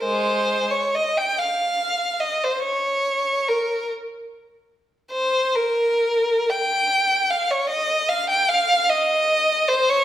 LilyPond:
\new Staff \with { instrumentName = "Violin" } { \time 6/8 \key bes \dorian \tempo 4. = 48 <aes c''>8. des''16 ees''16 g''16 f''4 ees''16 c''16 | des''4 bes'8 r4. | c''8 bes'4 g''4 f''16 des''16 | ees''8 f''16 g''16 f''8 ees''4 c''16 des''16 | }